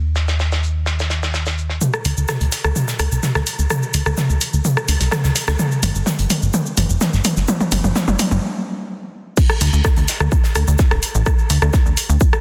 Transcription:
Already playing: D#2
0.16 snare, shaker
0.28 snare, shaker
0.40 snare, shaker
0.52 snare, shaker
0.63 shaker
0.86 snare, shaker
0.99 snare, shaker
1.10 snare, shaker
1.23 snare, shaker
1.34 snare, shaker
1.46 snare, shaker
1.58 shaker
1.69 snare
1.81 mid tom, shaker
1.94 cross-stick, shaker
2.05 D2, open hi-hat, shaker
2.17 D2, shaker
2.28 cross-stick, snare, mid tom, shaker
2.41 D2, closed hi-hat, shaker
2.52 snare, open hi-hat, shaker
2.64 D2, cross-stick, shaker
2.76 mid tom, shaker
2.88 snare, shaker
2.99 D2, cross-stick, open hi-hat, shaker
3.12 C2, shaker
3.23 snare, mid tom, shaker
3.35 D2, cross-stick, snare, shaker
3.47 open hi-hat, shaker
3.59 D2, shaker
3.70 cross-stick, mid tom, shaker
3.83 shaker
3.94 D2, open hi-hat, shaker
4.06 D2, cross-stick, shaker
4.17 snare, mid tom, shaker
4.30 D2, shaker
4.41 open hi-hat, shaker
4.53 D2, shaker
4.65 mid tom, shaker
4.77 cross-stick, shaker
4.88 D2, open hi-hat, shaker
5.00 C2, snare, open hi-hat, shaker
5.11 cross-stick, snare, mid tom, shaker
5.24 D2, snare, shaker
5.35 snare, open hi-hat, shaker
5.48 D2, cross-stick, snare, shaker
5.59 mid tom, shaker
5.72 shaker
5.83 G1, open hi-hat, mid tom, shaker
5.95 G1, shaker
6.06 snare, mid tom, shaker
6.19 G1, closed hi-hat, shaker
6.30 open hi-hat, mid tom, shaker
6.42 G1, shaker
6.53 mid tom, shaker
6.66 shaker
6.77 G1, open hi-hat, mid tom, shaker
6.90 F1, shaker
7.01 snare, mid tom, shaker
7.13 G1, snare, shaker
7.25 open hi-hat, mid tom, shaker
7.37 G1, snare, shaker
7.48 mid tom, shaker
7.61 mid tom, shaker
7.72 G1, open hi-hat, mid tom, shaker
7.84 G1, mid tom, shaker
7.96 snare, mid tom, shaker
8.08 G1, mid tom, shaker
8.19 open hi-hat, mid tom, shaker
8.31 G1, mid tom, shaker
9.37 kick, crash, shaker
9.50 cross-stick, shaker
9.61 D2, open hi-hat, shaker
9.73 D2, shaker
9.85 kick, cross-stick, snare, shaker
9.96 D2, closed hi-hat, shaker
10.08 snare, open hi-hat, shaker
10.20 D2, cross-stick, shaker
10.32 kick, shaker
10.44 snare, shaker
10.55 D2, cross-stick, open hi-hat, shaker
10.68 D2, shaker
10.78 kick, snare, shaker
10.91 D1, cross-stick, snare, shaker
11.03 open hi-hat, shaker
11.15 A1, shaker
11.26 kick, cross-stick, shaker
11.39 shaker
11.50 D2, open hi-hat, shaker
11.62 D2, cross-stick, shaker
11.73 kick, snare, shaker
11.86 D2, shaker
11.97 open hi-hat, shaker
12.09 D2, shaker
12.21 kick, shaker
12.33 cross-stick, shaker

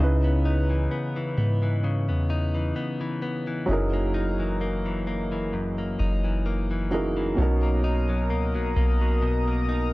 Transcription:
Already playing: C#3
0.00 C#2 C#3 C#4 D#4 E4 B4
0.24 B3
0.45 D#4
0.70 E3
0.91 B3
1.16 E3
1.38 G#2 B3
1.63 E3
1.84 C#3
2.09 E2 B3
2.30 D#4
2.55 E3
2.76 B3
3.01 E3
3.22 B3
3.47 E3
3.66 F#1 F#2 F#3 C#4 D#4 E4
3.71 G#4 A#4
3.93 A#3
4.14 D#4
4.40 E3
4.61 A#3
4.86 E3
5.07 A#3
5.32 E3
5.53 F#2
5.78 A#3
5.99 F#1 D#4
6.25 E3
6.46 A#3
6.71 E3
6.91 F#3 A#3 C#4 D#4 E4 G#4 A#4
7.17 E3
7.35 B1 B2 F#3 C#4 A#4 A#5 D#6
7.40 D#4 A#4
7.63 A#3
7.84 D#4
8.09 F#3
8.30 C#2 A#3
8.55 B1 F#3
8.76 B1 A#3
9.01 F#3
9.22 B2
9.47 A#3
9.69 D#4

